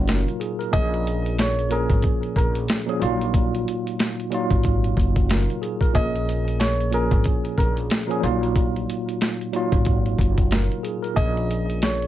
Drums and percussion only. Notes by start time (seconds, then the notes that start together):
0.08 snare, closed hi-hat
0.28 closed hi-hat
0.41 closed hi-hat
0.61 closed hi-hat
0.73 kick, closed hi-hat
0.94 closed hi-hat
1.07 closed hi-hat
1.26 closed hi-hat
1.38 snare, closed hi-hat
1.59 closed hi-hat
1.71 closed hi-hat
1.90 kick, closed hi-hat
2.02 kick, closed hi-hat
2.23 closed hi-hat
2.36 kick, closed hi-hat
2.55 closed hi-hat
2.68 snare, closed hi-hat
2.89 closed hi-hat
3.02 closed hi-hat
3.21 closed hi-hat
3.34 kick, closed hi-hat
3.55 closed hi-hat
3.68 closed hi-hat
3.87 closed hi-hat
3.99 snare, closed hi-hat
4.20 closed hi-hat
4.32 closed hi-hat
4.51 kick, closed hi-hat
4.63 kick, closed hi-hat
4.84 closed hi-hat
4.97 kick, closed hi-hat
5.16 kick, closed hi-hat
5.29 snare, closed hi-hat
5.50 closed hi-hat
5.63 closed hi-hat
5.81 kick, closed hi-hat
5.95 kick, closed hi-hat
6.16 closed hi-hat
6.29 closed hi-hat
6.48 closed hi-hat
6.60 snare, closed hi-hat
6.80 closed hi-hat
6.92 closed hi-hat
7.11 kick, closed hi-hat
7.24 kick, closed hi-hat
7.45 closed hi-hat
7.58 kick, closed hi-hat
7.77 closed hi-hat
7.90 snare, closed hi-hat
8.11 closed hi-hat
8.24 closed hi-hat
8.43 closed hi-hat
8.56 kick, closed hi-hat
8.76 closed hi-hat
8.90 closed hi-hat
9.09 closed hi-hat
9.21 snare, closed hi-hat
9.41 closed hi-hat
9.53 closed hi-hat
9.72 kick, closed hi-hat
9.85 kick, closed hi-hat
10.06 closed hi-hat
10.19 kick, closed hi-hat
10.38 kick, closed hi-hat
10.51 snare, closed hi-hat
10.72 closed hi-hat
10.85 closed hi-hat
11.04 closed hi-hat
11.17 kick, closed hi-hat
11.37 closed hi-hat
11.51 closed hi-hat
11.70 closed hi-hat
11.82 snare, closed hi-hat
12.02 closed hi-hat